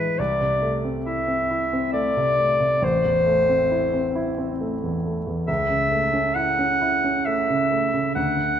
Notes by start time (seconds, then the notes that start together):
Already playing: A2 E3 G#3 D4 E4 B4
0.19 C2 D5
0.41 C3
0.62 A3
0.84 C4
1.05 E4 E5
1.28 C4
1.51 E4
1.73 C4
1.93 A3 D5
2.17 C3
2.38 A3
2.60 C3
2.82 A1 C5
3.05 E2
3.26 A3
3.49 C4
3.71 E4
3.94 C4
4.15 E4
4.38 C4
4.61 A3
4.83 E2
5.06 A3
5.27 E2
5.47 C#2 E5
5.69 C#3
5.91 A3
6.13 C#4
6.35 E4 F#5
6.59 C#4
6.82 E4
7.04 C#4
7.25 A3 E5
7.50 C#3
7.71 A3
7.94 C#3
8.15 D2 F#5
8.37 D3